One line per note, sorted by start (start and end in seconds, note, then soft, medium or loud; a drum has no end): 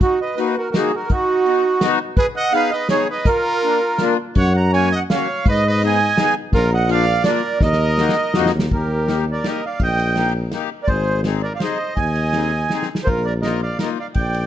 0.01 0.20 D#4 medium
0.01 0.20 F#4 medium
0.01 kick medium
0.01 closed hi-hat soft
0.21 0.37 B4 medium
0.21 0.39 D#5 medium
0.36 0.55 A#3 medium
0.36 0.56 D#4 soft
0.36 0.56 F#4 medium
0.36 0.57 B4 medium
0.36 closed hi-hat soft
0.58 0.70 F#4 medium
0.58 0.70 A#4 medium
0.71 0.92 A#3 medium
0.71 0.92 D#4 medium
0.71 0.75 F#4 soft
0.71 0.75 A#4 medium
0.71 snare medium
0.71 closed hi-hat medium
0.75 0.93 D#4 medium
0.75 0.92 F#4 medium
0.75 0.95 G#4 medium
0.95 1.10 F#4 medium
0.95 1.11 A#4 medium
1.10 1.96 D#4 medium
1.10 1.97 F#4 medium
1.10 kick medium
1.10 closed hi-hat soft
1.46 1.63 B3 medium
1.46 1.64 D#4 medium
1.46 1.63 F#4 medium
1.46 closed hi-hat soft
1.81 1.99 B3 medium
1.81 1.99 D#4 medium
1.81 1.99 F#4 loud
1.81 snare medium
1.81 closed hi-hat medium
2.17 2.27 G#4 medium
2.17 2.26 B4 loud
2.17 kick medium
2.17 closed hi-hat soft
2.36 2.52 D#5 loud
2.36 2.54 F#5 loud
2.52 2.70 B3 medium
2.52 2.71 D#4 medium
2.52 2.71 G#4 medium
2.52 2.72 B4 medium
2.52 2.73 F5 loud
2.52 closed hi-hat soft
2.71 2.89 B4 medium
2.71 2.88 D#5 loud
2.89 3.07 B3 medium
2.89 3.07 D#4 medium
2.89 3.08 G#4 medium
2.89 3.07 G#4 medium
2.89 3.08 C#5 medium
2.89 snare medium
2.89 closed hi-hat soft
3.10 3.25 B4 medium
3.10 3.28 D#5 medium
3.25 4.15 F4 loud
3.25 4.14 A#4 medium
3.25 kick medium
3.25 closed hi-hat medium
3.62 3.80 A#3 medium
3.62 3.80 D4 medium
3.62 3.80 F4 medium
3.62 closed hi-hat soft
3.98 4.17 A#3 medium
3.98 4.17 D4 medium
3.98 4.17 F4 medium
3.98 snare medium
3.98 closed hi-hat soft
4.35 5.07 F#2 loud
4.35 4.54 C#5 loud
4.35 4.57 F#5 loud
4.35 kick medium
4.35 closed hi-hat soft
4.56 4.72 F#5 medium
4.56 4.72 A#5 medium
4.73 4.90 A#3 medium
4.73 4.91 C#4 medium
4.73 4.91 F#4 medium
4.73 4.90 C#5 medium
4.73 4.93 G#5 loud
4.73 closed hi-hat soft
4.92 5.00 D#5 medium
4.92 5.03 F#5 loud
5.10 5.28 A#3 medium
5.10 5.28 C#4 medium
5.10 5.28 F#4 medium
5.10 5.44 C#5 medium
5.10 5.47 F5 medium
5.10 snare medium
5.10 closed hi-hat soft
5.46 6.15 G#2 loud
5.46 5.64 B4 loud
5.46 kick medium
5.46 closed hi-hat soft
5.50 5.67 D#5 loud
5.67 5.82 B4 medium
5.67 5.83 D#5 loud
5.82 5.99 B3 medium
5.82 5.99 D#4 medium
5.82 6.00 G#4 medium
5.82 6.33 D#5 medium
5.82 closed hi-hat soft
5.87 6.35 G#5 loud
6.17 6.34 B3 medium
6.17 6.34 D#4 medium
6.17 6.34 G#4 medium
6.17 snare medium
6.17 closed hi-hat soft
6.53 7.23 A#1 loud
6.53 6.71 F4 loud
6.53 6.73 A#4 loud
6.53 kick medium
6.53 closed hi-hat soft
6.73 6.88 D#5 medium
6.73 6.90 F#5 loud
6.88 7.05 A#3 medium
6.88 7.05 D4 medium
6.88 7.05 F4 medium
6.88 7.23 F5 loud
6.88 closed hi-hat soft
6.92 7.24 D5 medium
7.24 7.41 A#3 medium
7.24 7.41 D4 medium
7.24 7.42 F4 medium
7.24 7.58 D5 medium
7.24 snare medium
7.24 closed hi-hat medium
7.28 7.60 A#4 medium
7.61 8.09 D#2 loud
7.61 8.51 D#5 loud
7.61 kick medium
7.61 snare soft
7.65 8.52 A#4 medium
7.73 snare soft
7.97 8.15 A#3 medium
7.97 8.15 D#4 medium
7.97 8.16 F#4 medium
7.97 snare soft
8.09 snare medium
8.34 8.53 F2 medium
8.34 8.52 A#3 medium
8.34 8.52 D#4 medium
8.34 8.52 F#4 medium
8.34 snare medium
8.46 snare medium
8.55 8.70 D#2 medium
8.59 snare medium
8.71 9.42 D#2 loud
8.71 9.24 A#4 medium
8.71 kick medium
8.71 ride soft
8.75 9.25 G4 medium
9.07 9.25 A#3 medium
9.07 9.25 D#4 medium
9.07 9.26 G4 medium
9.07 snare medium
9.07 ride soft
9.31 9.45 A#4 medium
9.31 9.47 D5 medium
9.44 9.61 A#3 medium
9.44 9.61 D#4 medium
9.44 9.62 G4 medium
9.44 9.65 D#5 medium
9.44 snare medium
9.44 ride soft
9.49 9.64 A#4 medium
9.66 9.81 D5 medium
9.66 9.82 F5 medium
9.80 10.50 A#1 loud
9.80 10.32 D#5 medium
9.80 10.32 G5 loud
9.80 kick medium
9.80 ride soft
9.99 ride soft
10.16 10.33 A#3 medium
10.16 10.33 D#4 medium
10.16 10.34 G4 medium
10.16 snare medium
10.16 ride soft
10.51 10.69 A#3 medium
10.51 10.69 D#4 medium
10.51 10.70 G4 medium
10.51 snare medium
10.51 ride soft
10.82 10.88 A#4 medium
10.82 10.89 D5 medium
10.88 11.59 G#1 loud
10.88 11.21 G#4 medium
10.88 11.21 C5 loud
10.88 kick medium
10.88 ride soft
11.24 11.41 C4 medium
11.24 11.42 D#4 medium
11.24 11.42 G#4 medium
11.24 snare medium
11.24 ride soft
11.43 11.53 A#4 medium
11.43 11.53 D5 medium
11.55 11.59 D5 medium
11.55 11.61 F5 medium
11.59 11.78 C4 medium
11.59 11.78 D#4 medium
11.59 11.78 G#4 medium
11.59 11.93 C5 medium
11.59 11.98 D#5 medium
11.59 snare medium
11.59 ride soft
11.96 12.69 D#2 loud
11.96 12.86 D#5 medium
11.96 12.86 G#5 loud
11.96 kick medium
11.96 ride soft
12.15 ride soft
12.33 12.51 C4 medium
12.33 12.52 D#4 soft
12.33 12.52 G#4 medium
12.33 snare medium
12.33 ride soft
12.70 12.89 C4 medium
12.70 12.89 D#4 medium
12.70 12.89 G#4 medium
12.70 snare soft
12.82 snare soft
12.95 snare medium
13.04 13.78 A#1 loud
13.04 13.24 F4 medium
13.04 13.06 G#4 soft
13.04 13.26 A#4 medium
13.04 13.08 C5 medium
13.04 kick medium
13.04 ride soft
13.25 13.34 A#4 medium
13.25 13.33 D5 medium
13.42 13.61 A#3 medium
13.42 13.61 D#4 medium
13.42 13.62 F4 medium
13.42 13.61 A#4 medium
13.42 13.61 D#5 medium
13.42 snare soft
13.42 ride soft
13.62 13.79 D5 medium
13.62 13.79 F5 medium
13.79 13.98 A#3 medium
13.79 13.98 D#4 medium
13.79 13.99 F4 medium
13.79 13.88 A#4 medium
13.79 13.90 D#5 medium
13.79 snare medium
13.79 ride soft
13.99 14.07 D5 medium
13.99 14.08 F5 medium
14.14 14.46 A#1 loud
14.14 14.46 D5 medium
14.14 14.46 G5 medium
14.14 kick medium
14.14 ride soft
14.34 ride soft